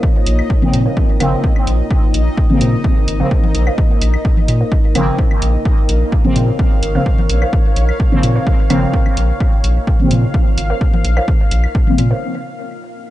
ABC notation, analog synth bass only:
X:1
M:4/4
L:1/8
Q:1/4=128
K:Bbm
V:1 name="Analog synth bass" clef=bass
z B,,, z B,, z A,,, z B,,, | z B,,, z B,, z A,,, z B,,, | z B,,, z B,, z A,,, z B,,, | z B,,, z B,, z A,,, z B,,, |
z B,,, z B,, z A,,, z B,,, | z B,,, z B,, z A,,, z B,,, | z B,,, z B,, z4 |]